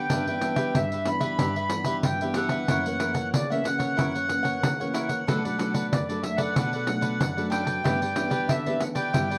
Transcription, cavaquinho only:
0.10 D4 G4 B4 E5
0.28 G4 B4 E5
0.41 D4 G4 B4 E5
0.56 G4 B4 E5
0.92 G4 B4 E5
1.06 muted cavaquinho stroke
1.20 G4 B4 E5
1.39 D4 G4 B4 E5
1.56 G4 B4 E5
1.71 muted cavaquinho stroke
1.86 G4 B4 E5
2.22 G4 B4 E5
2.35 D4 G4 B4 E5
2.51 G4 B4 E5
2.69 E4 A#4 C#5 F#5
2.86 A#4 C#5 F#5
2.99 E4 A#4 C#5 F#5
3.14 A#4 C#5 F#5
3.50 A#4 C#5 F#5
3.64 muted cavaquinho stroke
3.78 A#4 C#5 F#5
3.97 E4 A#4 C#5 F#5
4.14 A#4 C#5 F#5
4.29 muted cavaquinho stroke
4.43 A#4 C#5 F#5
4.80 A#4 C#5 F#5
4.94 E4 A#4 C#5 F#5
5.08 A#4 C#5 F#5
5.27 D4 A4 B4 D5
5.45 A4 B4 D5
5.58 D4 A4 B4 D5
5.74 A4 B4 D5
6.09 A4 B4 D5
6.23 muted cavaquinho stroke
6.38 A4 B4 D5
6.57 D4 A4 B4 D5
6.74 A4 B4 D5
6.87 muted cavaquinho stroke
7.01 A4 B4 D5
7.37 A4 B4 D5
7.50 D4 A4 B4 D5
7.65 A4 B4 D5
7.84 E4 G4 B4 D5
8.01 G4 B4 D5
8.16 E4 G4 B4 D5
8.30 G4 B4 D5
8.67 G4 B4 D5
8.80 muted cavaquinho stroke
8.95 G4 B4 D5
9.13 E4 G4 B4 D5
9.30 G4 B4 D5

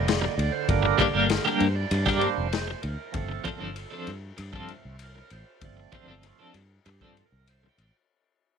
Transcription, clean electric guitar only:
0.22 muted clean electric guitar stroke
0.83 muted clean electric guitar stroke
0.98 G3 A#3 D4 G4
1.14 G3 A#3 D4 G4
1.30 muted clean electric guitar stroke
1.45 G3 A#3 D4 G4
1.91 muted clean electric guitar stroke
2.06 G3 A#3 D4 G4
2.68 muted clean electric guitar stroke
3.29 muted clean electric guitar stroke
3.44 F3 C4 D4 A4
3.60 F3 C4 D4 A4
3.75 muted clean electric guitar stroke
3.90 F3 C4 D4 A4
4.37 muted clean electric guitar stroke
4.53 F3 C4 D4 A4
5.15 muted clean electric guitar stroke
5.77 muted clean electric guitar stroke
5.92 F3 C4 D4 A4
6.08 F3 C4 D4 A4
6.24 muted clean electric guitar stroke
6.39 F3 C4 D4 A4
6.86 muted clean electric guitar stroke
7.02 F3 C4 D4 A4
7.63 muted clean electric guitar stroke

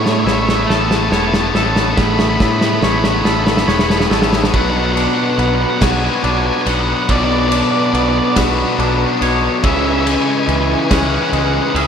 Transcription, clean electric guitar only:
Already playing: A3 E4 C#5
0.27 C#5
0.69 A4
1.12 C#5
1.55 A4
1.98 A3
2.41 E4
2.83 C#5
3.25 A4
3.68 C#5
4.10 A4
4.54 B2
4.96 D4
5.39 B3
5.82 F#4
6.24 D4
7.09 B2
7.51 D4
7.94 B3
8.36 F#4
8.80 D4
9.22 C#5
9.64 C#3
10.06 G#3
10.49 E3
10.91 C#4
11.33 G#3
11.76 G#4

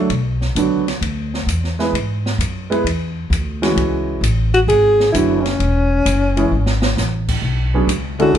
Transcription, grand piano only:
0.57 D3 F#3 B3 D4 F#4
1.79 G#3 B3 E4 G#4 B4
2.70 G#3 B3 E4 G#4 B4
3.62 E3 G#3 C#4 E4 F#4
5.14 D3 F#3 B3 D4 F#4
6.37 E3 G#3 C#4 E4 G#4
7.74 F#3 B3 C#4 D4 G#4
8.19 G#3 C#4 D4 E4 A4

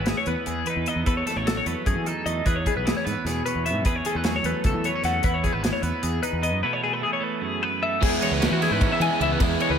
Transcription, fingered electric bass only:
Already playing: G#1
0.26 E2
0.47 E2
0.76 E2
0.96 E2
1.06 E2
1.36 A1
1.66 E2
1.86 F#2
1.95 E3
2.25 E2
2.45 E2
2.76 B1
3.06 G#2
3.25 E2
3.55 E2
3.74 G#2
3.84 E2
4.15 E2
4.44 E2
4.64 C#2
4.74 E3
5.03 E2
5.24 E2
5.53 G#1
5.82 E2
6.03 E2
6.33 E2
6.53 F#2
8.02 E2
8.31 C#2
8.51 E3
8.71 G#2
9.00 E3
9.20 C#2
9.40 E2
9.69 C#2

